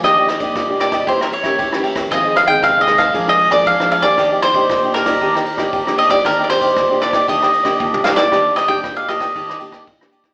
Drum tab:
RD |x-xxx-xxx-xxx-xx|x-xxx-xxx-xxx-xx|x-xxx-xxx-xxx-xx|x-xxx-xxx-xx----|
SD |r-r-r-rr-r-r-r-r|r-r-r-rr-r-r-r-r|r-r-r-rr-r-r-r-r|r-r-r-rr-r-r--oo|
T1 |----------------|----------------|----------------|------------o---|
T2 |----------------|----------------|----------------|-------------o--|
BD |o--oo--oo--oo--o|o--oo--oo--oo--o|o--oo--oo--oo--o|o--oo--oo--oo---|

RD |x-xxx-xxx-xxx-xx|
SD |r-r-r-rr-r-r-r-r|
T1 |----------------|
T2 |----------------|
BD |o--oo--oo--oo--o|